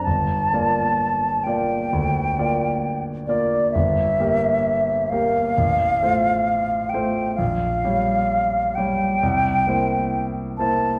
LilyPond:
<<
  \new Staff \with { instrumentName = "Flute" } { \time 4/4 \key g \dorian \tempo 4 = 66 a''4. g''2 d''8 | e''4. f''2 g''8 | f''4. g''2 a''8 | }
  \new Staff \with { instrumentName = "Grand piano" } { \time 4/4 \key g \dorian g,,8 <bes f' d''>4 <bes f' d''>8 d,8 <bes f' d''>4 <bes f' d''>8 | g,,8 <bes g' bes'>4 <bes g' bes'>8 a,,8 <a f' c''>4 <a f' c''>8 | bes,,8 <g g' des''>4 <g g' des''>8 c,8 <bes e' c''>4 <bes e' c''>8 | }
>>